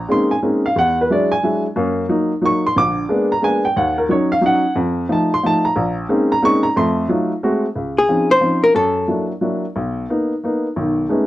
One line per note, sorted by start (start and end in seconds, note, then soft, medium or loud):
0.09 0.31 G#3 medium
0.09 0.31 A#3 medium
0.09 0.31 C4 soft
0.09 0.31 C#4 soft
0.09 0.32 D#4 medium
0.09 0.31 C6 loud
0.31 0.38 G#5 medium
0.43 0.65 G#3 medium
0.43 0.65 A#3 soft
0.43 0.65 C4 soft
0.43 0.65 C#4 soft
0.43 0.65 D#4 medium
0.66 0.76 F5 medium
0.76 1.04 E2 medium
0.76 0.98 F#5 loud
1.01 1.11 B4 medium
1.10 1.32 F#3 medium
1.10 1.32 G#3 medium
1.10 1.32 D4 medium
1.10 1.32 E4 medium
1.10 1.31 D5 medium
1.31 1.62 G#5 loud
1.43 1.65 F#3 soft
1.43 1.65 G#3 soft
1.43 1.65 D4 soft
1.43 1.65 E4 medium
1.76 2.04 F#2 medium
1.76 2.04 A#3 medium
2.09 2.31 F#3 medium
2.09 2.31 A#3 medium
2.09 2.32 D#4 medium
2.42 2.64 F#3 medium
2.42 2.65 A#3 soft
2.42 2.64 D#4 medium
2.42 2.64 C#6 loud
2.66 2.77 C6 loud
2.76 3.04 A#1 medium
2.76 3.04 D3 medium
2.76 3.27 D6 loud
3.09 3.31 G#3 medium
3.09 3.31 A#3 medium
3.09 3.32 B3 medium
3.09 3.32 D4 medium
3.32 3.43 A#5 medium
3.42 3.64 G#3 medium
3.42 3.65 A#3 soft
3.42 3.65 B3 soft
3.42 3.65 D4 medium
3.42 3.64 G#5 loud
3.65 3.76 G5 medium
3.77 4.05 D#2 medium
3.77 3.97 F#5 medium
3.98 4.09 A#4 medium
4.09 4.31 F#3 medium
4.09 4.31 C#4 soft
4.09 4.31 D#4 medium
4.09 4.30 C#5 medium
4.32 4.43 F5 loud
4.41 4.64 F#3 medium
4.41 4.64 C#4 soft
4.41 4.64 D#4 medium
4.46 4.75 F#5 loud
4.76 5.04 F2 medium
5.09 5.31 F3 medium
5.09 5.31 A3 medium
5.09 5.31 D#4 medium
5.09 5.31 A5 medium
5.34 5.44 C6 loud
5.43 5.65 F3 medium
5.43 5.65 A3 medium
5.43 5.65 D#4 medium
5.43 5.65 A5 loud
5.65 5.95 A#5 medium
5.76 6.04 A#1 medium
6.09 6.31 G#3 medium
6.09 6.31 A#3 medium
6.09 6.31 C4 medium
6.09 6.31 C#4 medium
6.09 6.31 D#4 medium
6.32 6.43 A#5 loud
6.42 6.64 G#3 medium
6.42 6.64 A#3 soft
6.42 6.64 C4 soft
6.42 6.65 C#4 medium
6.42 6.65 D#4 medium
6.42 6.64 C#6 loud
6.63 6.75 A#5 loud
6.76 7.05 F2 medium
6.76 7.04 A3 medium
6.76 7.07 C6 loud
7.09 7.31 F#3 medium
7.09 7.31 A3 medium
7.09 7.31 D#4 medium
7.09 7.31 F4 medium
7.43 7.65 G#3 medium
7.43 7.65 A3 medium
7.43 7.65 C4 medium
7.43 7.65 F#4 medium
7.76 8.04 C#2 medium
7.99 8.29 G#4 medium
8.09 8.31 F3 medium
8.09 8.31 C4 soft
8.09 8.31 C#4 soft
8.09 8.31 D#4 medium
8.31 8.62 C5 medium
8.41 8.64 F3 medium
8.41 8.64 C4 soft
8.41 8.64 C#4 soft
8.41 8.65 D#4 soft
8.64 8.75 A#4 medium
8.75 9.04 F#2 medium
8.75 9.26 A4 medium
9.08 9.31 F#3 medium
9.08 9.31 A#3 soft
9.08 9.31 D4 soft
9.08 9.31 E4 medium
9.41 9.64 F#3 medium
9.41 9.64 A#3 soft
9.41 9.65 D4 soft
9.41 9.65 E4 medium
9.76 10.05 B1 medium
10.10 10.32 A#3 medium
10.10 10.32 B3 soft
10.10 10.32 D#4 medium
10.44 10.66 A#3 medium
10.44 10.66 B3 soft
10.44 10.66 D#4 medium
10.76 11.05 B1 medium
10.76 11.05 D#3 medium
11.09 11.27 G#3 medium
11.09 11.27 A3 soft
11.09 11.27 B3 soft
11.09 11.27 C#4 soft
11.09 11.27 D#4 medium